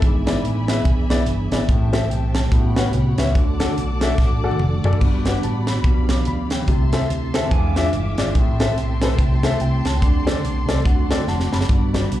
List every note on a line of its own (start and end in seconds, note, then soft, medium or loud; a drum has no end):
0.00 0.38 G#1 loud
0.00 0.64 G#2 medium
0.00 2.49 E3 medium
0.00 1.66 B3 soft
0.00 1.66 D4 soft
0.00 1.67 G#4 medium
0.00 1.65 D5 medium
0.00 2.48 E5 medium
0.00 1.67 G#5 medium
0.00 1.67 B5 medium
0.00 kick medium
0.00 closed hi-hat medium
0.26 0.36 B3 medium
0.26 0.36 E4 medium
0.26 0.37 G#4 medium
0.26 0.37 D5 medium
0.26 snare loud
0.26 closed hi-hat medium
0.44 0.79 A1 medium
0.44 closed hi-hat medium
0.68 0.78 B3 medium
0.68 0.78 E4 medium
0.68 0.78 G#4 medium
0.68 0.79 E5 medium
0.68 snare loud
0.68 closed hi-hat medium
0.85 1.21 B1 loud
0.85 kick loud
0.85 closed hi-hat medium
1.10 1.20 B3 medium
1.10 1.20 E4 medium
1.10 1.20 G#4 medium
1.10 1.20 D5 medium
1.10 snare loud
1.10 closed hi-hat medium
1.26 1.48 G1 medium
1.26 closed hi-hat medium
1.51 1.66 G#1 medium
1.51 1.62 B3 medium
1.51 1.62 E4 medium
1.51 1.62 G#4 medium
1.51 1.62 D5 medium
1.51 snare loud
1.51 closed hi-hat medium
1.68 2.04 A1 loud
1.68 2.31 A2 medium
1.68 2.51 A3 medium
1.68 2.51 C4 medium
1.68 2.50 G4 medium
1.68 2.51 C5 medium
1.68 3.33 G5 medium
1.68 2.51 A5 medium
1.68 kick medium
1.68 closed hi-hat medium
1.93 2.03 C4 medium
1.93 2.03 G4 medium
1.93 2.03 A4 medium
1.93 2.03 E5 medium
1.93 snare loud
1.93 closed hi-hat medium
2.10 2.45 B1 medium
2.10 2.33 G5 medium
2.10 closed hi-hat medium
2.35 2.75 A5 medium
2.35 snare loud
2.35 closed hi-hat medium
2.51 2.87 A1 medium
2.51 3.15 A2 medium
2.51 3.34 B3 medium
2.51 3.34 C#4 medium
2.51 4.99 F#4 medium
2.51 3.34 G4 medium
2.51 3.34 C#5 medium
2.51 5.82 F#5 medium
2.51 3.34 B5 medium
2.51 kick loud
2.51 closed hi-hat medium
2.76 2.86 C#4 medium
2.76 2.86 G4 medium
2.76 2.86 B4 medium
2.76 2.86 F#5 medium
2.76 snare loud
2.76 closed hi-hat medium
2.93 3.14 C2 medium
2.93 closed hi-hat medium
3.18 3.33 C#2 medium
3.18 3.28 C#4 medium
3.18 3.28 G4 medium
3.18 3.28 B4 medium
3.18 3.28 E5 medium
3.18 snare loud
3.18 closed hi-hat medium
3.34 3.71 D2 loud
3.34 3.97 D3 medium
3.34 5.00 A3 soft
3.34 6.65 D4 soft
3.34 5.00 A4 medium
3.34 6.64 D5 medium
3.34 5.00 A5 medium
3.34 5.00 D6 medium
3.34 kick medium
3.34 closed hi-hat medium
3.60 3.69 D4 medium
3.60 3.70 F#4 medium
3.60 3.70 A4 medium
3.60 3.70 F#5 medium
3.60 snare loud
3.60 closed hi-hat medium
3.76 4.12 B1 medium
3.76 closed hi-hat medium
4.01 4.11 D4 medium
4.01 4.11 F#4 medium
4.01 4.12 A4 medium
4.01 4.12 E5 medium
4.01 snare loud
4.01 closed hi-hat medium
4.18 4.54 A1 medium
4.18 kick medium
4.18 snare soft
4.44 4.53 D4 medium
4.44 4.53 F#4 medium
4.44 4.53 A4 medium
4.44 4.53 F#5 medium
4.51 high tom medium
4.59 4.81 F1 medium
4.59 mid tom medium
4.84 4.99 F#1 medium
4.84 4.94 D4 medium
4.84 4.95 F#4 medium
4.84 4.95 A4 medium
4.84 4.95 D5 medium
4.84 floor tom medium
4.93 floor tom medium
5.01 5.37 G1 loud
5.01 5.64 G2 medium
5.01 6.66 B3 soft
5.01 5.84 F#4 medium
5.01 7.49 G4 medium
5.01 6.66 B5 medium
5.01 kick loud
5.01 crash medium
5.25 5.36 D4 medium
5.25 5.36 G4 medium
5.25 5.36 B4 medium
5.25 5.37 F#5 medium
5.25 snare loud
5.25 closed hi-hat medium
5.43 5.78 A1 medium
5.43 5.67 A5 medium
5.43 closed hi-hat medium
5.67 6.08 B5 medium
5.67 snare loud
5.67 closed hi-hat medium
5.84 6.20 B1 medium
5.84 6.47 B2 medium
5.84 6.67 F3 medium
5.84 6.67 F5 medium
5.84 kick loud
5.84 closed hi-hat medium
6.09 6.26 D6 medium
6.09 snare loud
6.09 closed hi-hat medium
6.25 6.62 D2 medium
6.25 6.50 B5 medium
6.25 closed hi-hat medium
6.50 6.91 G5 medium
6.50 snare loud
6.50 closed hi-hat medium
6.67 7.03 C2 loud
6.67 7.31 C3 medium
6.67 7.51 A3 soft
6.67 7.50 C4 medium
6.67 9.98 E4 medium
6.67 9.98 E5 medium
6.67 7.50 A5 medium
6.67 7.50 C6 medium
6.67 kick medium
6.67 closed hi-hat medium
6.93 7.03 C4 medium
6.93 7.03 G4 medium
6.93 7.03 A4 medium
6.93 7.03 E5 medium
6.93 snare loud
6.93 closed hi-hat medium
7.10 7.45 D2 medium
7.10 closed hi-hat medium
7.34 7.44 C4 medium
7.34 7.51 C4 medium
7.34 7.44 G4 medium
7.34 7.51 A4 medium
7.34 7.45 A4 medium
7.34 7.45 E5 medium
7.34 snare loud
7.34 closed hi-hat medium
7.50 7.87 E2 medium
7.50 8.14 E3 medium
7.50 8.34 G#3 medium
7.50 7.75 B3 medium
7.50 8.34 D4 medium
7.50 7.75 G#4 medium
7.50 8.33 F5 medium
7.50 8.34 F5 medium
7.50 8.33 G#5 medium
7.50 8.33 D6 medium
7.50 kick loud
7.50 closed hi-hat medium
7.76 8.32 G#3 medium
7.76 7.87 D4 medium
7.76 8.32 E4 medium
7.76 7.86 F4 medium
7.76 7.86 G#4 medium
7.76 7.87 E5 medium
7.76 snare loud
7.76 closed hi-hat medium
7.93 8.14 G1 medium
7.93 closed hi-hat medium
8.18 8.33 G#1 medium
8.18 8.28 D4 medium
8.18 8.28 F4 medium
8.18 8.28 G#4 medium
8.18 8.28 D5 medium
8.18 snare loud
8.18 closed hi-hat medium
8.35 8.71 A1 loud
8.35 8.98 A2 medium
8.35 11.66 A3 medium
8.35 10.83 C4 medium
8.35 10.83 G4 medium
8.35 10.83 G5 medium
8.35 11.66 A5 medium
8.35 11.66 C6 medium
8.35 kick medium
8.35 closed hi-hat medium
8.60 8.70 C4 medium
8.60 8.70 G4 medium
8.60 8.70 A4 medium
8.60 8.70 E5 medium
8.60 snare loud
8.60 closed hi-hat medium
8.77 9.12 B1 medium
8.77 closed hi-hat medium
9.02 9.12 C4 medium
9.02 9.12 G4 medium
9.02 9.12 A4 medium
9.02 9.12 B4 medium
9.02 snare loud
9.02 closed hi-hat medium
9.18 9.54 C2 medium
9.18 kick loud
9.18 closed hi-hat medium
9.43 9.53 C4 medium
9.43 9.53 G4 medium
9.43 9.53 A4 medium
9.43 9.53 E5 medium
9.43 snare loud
9.43 closed hi-hat medium
9.60 9.81 C2 medium
9.60 9.84 G5 medium
9.60 closed hi-hat medium
9.85 9.99 C#2 medium
9.85 10.25 A5 medium
9.85 snare medium
9.85 closed hi-hat medium
10.02 10.38 D2 loud
10.02 12.20 D3 medium
10.02 10.65 D3 medium
10.02 10.84 D5 medium
10.02 kick medium
10.02 closed hi-hat medium
10.26 10.36 C4 medium
10.26 10.36 G4 medium
10.26 10.36 A4 medium
10.26 10.37 D5 medium
10.26 snare loud
10.26 closed hi-hat medium
10.43 10.65 B1 medium
10.43 closed hi-hat medium
10.68 10.83 C2 medium
10.68 10.78 C4 medium
10.68 10.78 G4 medium
10.68 10.78 A4 medium
10.68 10.79 D5 medium
10.68 snare loud
10.68 closed hi-hat medium
10.84 11.21 D2 medium
10.84 11.48 D3 medium
10.84 11.68 C4 medium
10.84 11.68 F#4 medium
10.84 12.20 D5 medium
10.84 12.20 F#5 medium
10.84 11.09 F#5 medium
10.84 kick loud
10.84 closed hi-hat medium
11.10 11.20 C4 medium
11.10 11.20 F#4 medium
11.10 11.20 A4 medium
11.10 11.20 D5 medium
11.10 11.26 G5 medium
11.10 snare loud
11.10 closed hi-hat medium
11.27 11.48 F1 medium
11.27 11.51 F#5 medium
11.27 11.51 A5 medium
11.27 snare medium
11.40 snare medium
11.52 11.67 F#1 medium
11.52 11.92 A5 medium
11.52 11.68 B5 medium
11.52 snare medium
11.61 snare medium
11.68 12.05 G1 loud
11.68 12.20 G2 medium
11.68 12.20 G3 medium
11.68 12.20 B3 soft
11.68 12.20 F#4 medium
11.68 12.20 B5 medium
11.68 kick medium
11.68 closed hi-hat medium
11.93 12.03 B3 medium
11.93 12.03 F#4 medium
11.93 12.04 G4 medium
11.93 12.04 D5 medium
11.93 snare loud
11.93 closed hi-hat medium
12.11 12.20 B1 medium
12.11 closed hi-hat medium